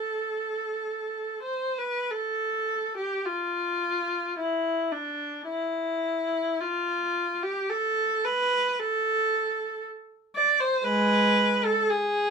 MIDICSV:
0, 0, Header, 1, 2, 480
1, 0, Start_track
1, 0, Key_signature, 0, "minor"
1, 0, Tempo, 1273885
1, 274, Tempo, 1363636
1, 754, Time_signature, 4, 2, 24, 8
1, 754, Tempo, 1147228
1, 1234, Tempo, 1121495
1, 2674, Tempo, 1092896
1, 3634, Tempo, 1050788
1, 5239, End_track
2, 0, Start_track
2, 0, Title_t, "Viola"
2, 0, Program_c, 0, 41
2, 0, Note_on_c, 0, 69, 50
2, 520, Note_off_c, 0, 69, 0
2, 521, Note_on_c, 0, 72, 51
2, 637, Note_off_c, 0, 72, 0
2, 645, Note_on_c, 0, 71, 52
2, 754, Note_off_c, 0, 71, 0
2, 763, Note_on_c, 0, 69, 64
2, 1120, Note_off_c, 0, 69, 0
2, 1122, Note_on_c, 0, 67, 61
2, 1235, Note_off_c, 0, 67, 0
2, 1242, Note_on_c, 0, 65, 64
2, 1718, Note_off_c, 0, 65, 0
2, 1725, Note_on_c, 0, 64, 61
2, 1953, Note_off_c, 0, 64, 0
2, 1954, Note_on_c, 0, 62, 60
2, 2192, Note_on_c, 0, 64, 61
2, 2195, Note_off_c, 0, 62, 0
2, 2662, Note_off_c, 0, 64, 0
2, 2674, Note_on_c, 0, 65, 65
2, 3036, Note_off_c, 0, 65, 0
2, 3037, Note_on_c, 0, 67, 68
2, 3155, Note_off_c, 0, 67, 0
2, 3156, Note_on_c, 0, 69, 70
2, 3393, Note_off_c, 0, 69, 0
2, 3397, Note_on_c, 0, 71, 79
2, 3633, Note_on_c, 0, 69, 74
2, 3634, Note_off_c, 0, 71, 0
2, 4114, Note_off_c, 0, 69, 0
2, 4348, Note_on_c, 0, 74, 73
2, 4458, Note_off_c, 0, 74, 0
2, 4460, Note_on_c, 0, 72, 74
2, 4571, Note_on_c, 0, 56, 67
2, 4572, Note_on_c, 0, 71, 84
2, 4581, Note_off_c, 0, 72, 0
2, 4922, Note_off_c, 0, 56, 0
2, 4940, Note_off_c, 0, 71, 0
2, 4942, Note_on_c, 0, 69, 82
2, 5056, Note_on_c, 0, 68, 89
2, 5067, Note_off_c, 0, 69, 0
2, 5239, Note_off_c, 0, 68, 0
2, 5239, End_track
0, 0, End_of_file